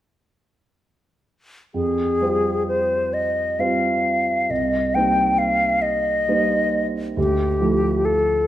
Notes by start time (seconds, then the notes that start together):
1.74 F2 G#4
2.21 G3 C4 F4 C5
2.68 C5
3.14 D#5
3.59 G3 C4 F4 C5 F5
4.50 C2 D#5
4.95 G3 A#3 D#4 C5 G5
5.38 F5
5.82 D#5
6.28 G3 A#3 D#4 C5
7.17 D2 G4
7.61 F3 A3 E4 A4
8.05 A4